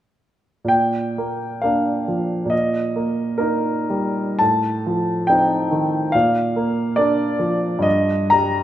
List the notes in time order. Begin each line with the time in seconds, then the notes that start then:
0.65 A#2 G5
1.18 A#3
1.62 A#3 D4 F5
2.08 F3
2.45 A#2
2.50 D#5
2.96 A#3
3.38 A#3 D#4 A#4
3.90 G3
4.39 A2 A5
4.86 F3
5.27 C4 D#4 G5
5.71 D#3
6.12 A#2 F5
6.56 A#3
6.96 A#3 D4 D5
7.39 F3
7.79 G2 D#5
8.30 G3 A#5